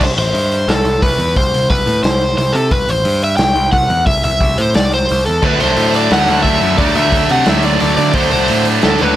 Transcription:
0.01 0.16 C2 medium
0.01 0.08 C5 medium
0.01 kick loud
0.01 crash loud
0.17 0.33 A1 medium
0.17 0.71 C5 loud
0.17 open hi-hat medium
0.34 0.65 G2 medium
0.34 open hi-hat medium
0.52 open hi-hat medium
0.68 0.84 C2 medium
0.68 1.00 A4 medium
0.68 snare medium
0.68 open hi-hat medium
0.84 1.00 C2 medium
0.84 open hi-hat soft
1.02 1.18 C2 medium
1.02 1.34 B4 medium
1.02 kick medium
1.02 open hi-hat medium
1.19 1.34 E2 medium
1.19 open hi-hat medium
1.36 1.52 C2 loud
1.36 1.70 C5 loud
1.36 kick loud
1.36 open hi-hat medium
1.54 1.69 C2 medium
1.54 open hi-hat medium
1.70 1.86 C2 medium
1.70 2.02 B4 loud
1.70 kick medium
1.70 open hi-hat medium
1.86 2.02 A2 medium
1.86 open hi-hat medium
2.03 2.34 C2 medium
2.03 2.36 C5 medium
2.03 snare loud
2.03 open hi-hat medium
2.21 open hi-hat soft
2.38 2.53 C2 medium
2.38 2.54 C5 medium
2.38 open hi-hat medium
2.53 2.70 C3 medium
2.53 2.72 A4 medium
2.53 open hi-hat medium
2.71 2.87 C2 loud
2.71 2.90 B4 loud
2.71 kick loud
2.71 open hi-hat medium
2.88 3.04 A1 medium
2.88 3.24 C5 loud
2.88 open hi-hat medium
3.04 3.36 G2 medium
3.04 open hi-hat medium
3.22 3.36 E5 medium
3.22 open hi-hat medium
3.37 3.54 C2 medium
3.37 3.72 G5 medium
3.37 snare loud
3.37 open hi-hat medium
3.55 3.71 C2 medium
3.55 open hi-hat medium
3.72 3.89 C2 medium
3.72 4.06 F#5 loud
3.72 kick medium
3.72 open hi-hat medium
3.89 4.05 E2 medium
3.89 open hi-hat soft
4.06 4.22 C2 medium
4.06 4.23 E5 loud
4.06 kick loud
4.06 open hi-hat medium
4.24 4.40 C2 medium
4.24 4.60 E5 loud
4.24 open hi-hat medium
4.41 4.57 C2 medium
4.41 kick medium
4.41 open hi-hat medium
4.58 4.74 A2 medium
4.58 4.75 C5 medium
4.58 open hi-hat medium
4.74 5.06 C2 medium
4.74 4.93 D5 medium
4.74 snare loud
4.74 open hi-hat medium
4.92 5.25 C5 medium
4.92 open hi-hat medium
5.09 5.26 C2 medium
5.09 open hi-hat medium
5.26 5.42 E2 medium
5.26 5.45 A4 medium
5.26 open hi-hat soft
5.42 5.58 D2 medium
5.42 6.78 D3 medium
5.42 6.79 F#3 medium
5.42 6.80 A3 medium
5.42 6.81 D4 medium
5.42 5.60 B4 medium
5.42 kick loud
5.42 crash loud
5.60 5.76 C2 medium
5.60 5.96 C5 loud
5.60 open hi-hat medium
5.77 6.08 A2 medium
5.77 open hi-hat medium
5.94 6.13 D5 medium
5.94 open hi-hat medium
6.11 6.27 D2 loud
6.11 6.42 F#5 medium
6.11 snare loud
6.11 open hi-hat medium
6.28 6.44 D2 medium
6.28 open hi-hat medium
6.43 6.61 D2 loud
6.43 6.76 E5 medium
6.43 kick medium
6.43 open hi-hat medium
6.61 6.78 F#2 medium
6.61 open hi-hat medium
6.78 6.94 D2 medium
6.78 8.13 D3 medium
6.78 8.14 F#3 loud
6.78 8.15 A3 loud
6.78 8.15 D4 medium
6.78 6.96 D5 loud
6.78 kick loud
6.78 open hi-hat medium
6.95 7.11 D2 medium
6.95 7.32 E5 medium
6.95 open hi-hat medium
7.12 7.28 D2 medium
7.12 kick medium
7.12 open hi-hat medium
7.29 7.45 C3 medium
7.29 7.49 F#5 medium
7.29 open hi-hat medium
7.46 7.77 D2 medium
7.46 7.65 E5 medium
7.46 snare loud
7.46 open hi-hat medium
7.63 7.80 D5 medium
7.63 open hi-hat medium
7.80 7.97 D2 medium
7.80 7.96 D5 medium
7.80 open hi-hat medium
7.97 8.13 D3 medium
7.97 8.14 D5 medium
7.97 open hi-hat medium
8.13 8.30 D2 loud
8.13 9.16 D3 medium
8.13 9.16 F#3 loud
8.13 9.16 A3 loud
8.13 9.16 D4 medium
8.13 8.30 C5 medium
8.13 kick loud
8.13 open hi-hat medium
8.31 8.48 C2 medium
8.31 8.64 C5 loud
8.31 open hi-hat medium
8.48 8.80 A2 medium
8.48 open hi-hat medium
8.65 open hi-hat medium
8.82 8.99 D2 medium
8.82 9.01 A4 medium
8.82 snare loud
8.82 open hi-hat medium
8.98 9.15 D2 medium
8.98 9.16 B4 medium
8.98 open hi-hat medium

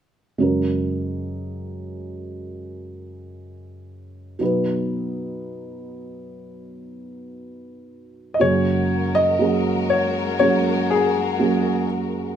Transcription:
0.38 4.36 F#2 soft
0.38 4.36 C#3 soft
0.38 4.35 G#3 soft
0.38 4.36 C#4 soft
0.38 4.37 F#4 soft
0.38 4.37 A#4 soft
4.39 8.37 B2 medium
4.39 8.36 F#3 soft
4.39 8.36 B3 soft
4.39 8.37 D#4 soft
4.39 8.37 B4 medium
8.34 8.41 D#5 medium
8.39 12.36 F#2 soft
8.39 12.36 C#3 medium
8.39 9.35 F#3 medium
8.39 12.36 G#3 medium
8.39 9.35 A#3 soft
8.39 9.36 C#4 soft
8.39 12.36 F#4 medium
8.39 9.36 G#4 medium
8.39 12.36 A#4 medium
8.39 9.12 C#5 medium
9.15 9.92 D#5 medium
9.39 10.35 F#3 medium
9.39 10.35 A#3 soft
9.39 10.35 C#4 soft
9.39 10.36 G#4 medium
9.90 10.38 C#5 medium
10.39 11.35 F#3 medium
10.39 11.35 A#3 medium
10.39 11.36 C#4 medium
10.39 11.36 G#4 medium
10.39 10.91 C#5 medium
10.90 11.86 G#4 medium
11.39 12.35 F#3 medium
11.39 12.35 A#3 medium
11.39 12.35 C#4 soft
11.39 12.36 G#4 medium

